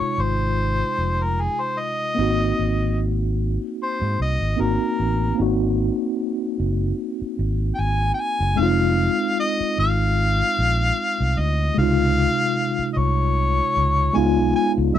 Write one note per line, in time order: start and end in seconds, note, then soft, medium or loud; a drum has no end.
0.00 1.74 C3 medium
0.00 1.73 G#3 medium
0.00 1.75 D#4 medium
0.00 1.76 F4 medium
0.00 0.23 C#5 loud
0.00 muted fingered electric bass stroke soft
0.18 0.81 G#1 medium
0.18 1.25 C5 loud
0.99 1.47 F1 medium
1.23 1.43 A#4 medium
1.41 1.62 G#4 medium
1.61 1.81 C5 medium
1.80 2.99 D#5 loud
2.15 2.50 G#1 loud
2.15 4.53 A#3 medium
2.15 4.54 C4 medium
2.15 4.55 D#4 medium
2.21 4.56 F#4 medium
2.59 3.57 G#1 medium
3.83 4.18 C5 medium
4.02 4.16 G#2 medium
4.20 4.36 C2 medium
4.20 4.62 D#5 medium
4.41 4.55 G#1 medium
4.57 4.76 G#1 medium
4.57 5.34 A#3 medium
4.57 5.36 C4 soft
4.57 5.38 D#4 soft
4.57 5.39 F#4 medium
4.61 5.40 A#4 medium
5.00 5.31 A1 medium
5.35 8.52 A#3 medium
5.35 8.54 C4 medium
5.39 5.88 G#1 loud
5.39 8.55 D#4 medium
5.39 8.56 F#4 medium
6.60 6.91 F#1 medium
7.22 muted fingered electric bass stroke soft
7.39 7.70 G#1 medium
7.75 8.10 G#1 medium
7.75 7.82 G5 medium
7.80 8.13 G#5 loud
8.14 8.22 G5 medium
8.20 8.61 G#5 loud
8.40 8.55 F#1 loud
8.56 9.07 F1 loud
8.56 11.72 G#3 medium
8.56 11.73 C4 medium
8.56 11.74 D#4 medium
8.56 9.39 F5 loud
8.62 11.75 F4 medium
9.40 9.76 D#5 loud
9.60 muted fingered electric bass stroke soft
9.79 10.41 G#1 medium
9.79 11.40 F5 loud
10.59 10.90 A#1 medium
11.20 11.34 C2 medium
11.38 11.69 D2 loud
11.38 11.78 D#5 loud
11.74 12.26 C#2 loud
11.74 14.12 C3 medium
11.74 14.11 G#3 medium
11.79 14.13 D#4 medium
11.79 14.14 F4 medium
11.79 12.87 F5 loud
12.79 muted fingered electric bass stroke soft
12.93 13.59 C2 loud
12.93 12.99 D#5 medium
12.97 14.18 C#5 loud
13.77 14.08 C#2 medium
14.13 14.38 C#2 loud
14.13 14.94 G#3 medium
14.13 14.95 B3 medium
14.13 14.95 D#4 medium
14.13 14.55 G#5 loud
14.17 14.96 F4 medium
14.38 14.52 B1 loud
14.56 14.72 G#5 loud
14.78 14.92 C#2 loud
14.93 14.99 C2 loud
14.93 14.99 G3 medium
14.93 14.99 A#3 medium
14.93 14.99 E5 loud